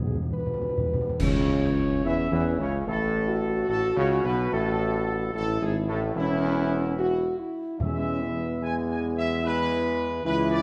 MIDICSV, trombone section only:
0, 0, Header, 1, 2, 480
1, 0, Start_track
1, 0, Key_signature, 3, "major"
1, 0, Tempo, 859599
1, 672, Time_signature, 4, 2, 24, 8
1, 1143, Tempo, 819672
1, 6165, End_track
2, 0, Start_track
2, 0, Title_t, "Trombone section"
2, 0, Program_c, 0, 61
2, 668, Note_on_c, 0, 49, 98
2, 1118, Note_off_c, 0, 49, 0
2, 1141, Note_on_c, 0, 52, 98
2, 1215, Note_off_c, 0, 52, 0
2, 1304, Note_on_c, 0, 52, 101
2, 1454, Note_off_c, 0, 52, 0
2, 1464, Note_on_c, 0, 49, 95
2, 1614, Note_off_c, 0, 49, 0
2, 1624, Note_on_c, 0, 45, 105
2, 2081, Note_off_c, 0, 45, 0
2, 2104, Note_on_c, 0, 45, 80
2, 2177, Note_off_c, 0, 45, 0
2, 2265, Note_on_c, 0, 49, 112
2, 2417, Note_off_c, 0, 49, 0
2, 2429, Note_on_c, 0, 47, 102
2, 2580, Note_off_c, 0, 47, 0
2, 2592, Note_on_c, 0, 45, 109
2, 3051, Note_off_c, 0, 45, 0
2, 3068, Note_on_c, 0, 45, 82
2, 3141, Note_off_c, 0, 45, 0
2, 3230, Note_on_c, 0, 44, 86
2, 3302, Note_off_c, 0, 44, 0
2, 3387, Note_on_c, 0, 45, 109
2, 3537, Note_off_c, 0, 45, 0
2, 3548, Note_on_c, 0, 40, 115
2, 4247, Note_off_c, 0, 40, 0
2, 4510, Note_on_c, 0, 52, 84
2, 4511, Note_on_c, 0, 56, 78
2, 4967, Note_off_c, 0, 52, 0
2, 4967, Note_off_c, 0, 56, 0
2, 4986, Note_on_c, 0, 56, 84
2, 4988, Note_on_c, 0, 52, 77
2, 5445, Note_off_c, 0, 56, 0
2, 5446, Note_off_c, 0, 52, 0
2, 5468, Note_on_c, 0, 52, 96
2, 5468, Note_on_c, 0, 56, 96
2, 5921, Note_off_c, 0, 52, 0
2, 5921, Note_off_c, 0, 56, 0
2, 5944, Note_on_c, 0, 52, 102
2, 5944, Note_on_c, 0, 56, 83
2, 6165, Note_off_c, 0, 52, 0
2, 6165, Note_off_c, 0, 56, 0
2, 6165, End_track
0, 0, End_of_file